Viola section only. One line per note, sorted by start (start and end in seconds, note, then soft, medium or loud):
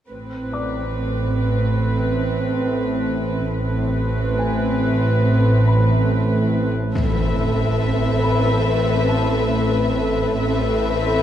0.09 3.48 C4 soft
0.09 3.48 B4 soft
3.53 6.71 C4 soft
3.53 6.71 B4 soft
6.95 10.34 C4 soft
6.95 10.34 A4 soft
10.38 11.23 C4 soft
10.38 11.23 A4 soft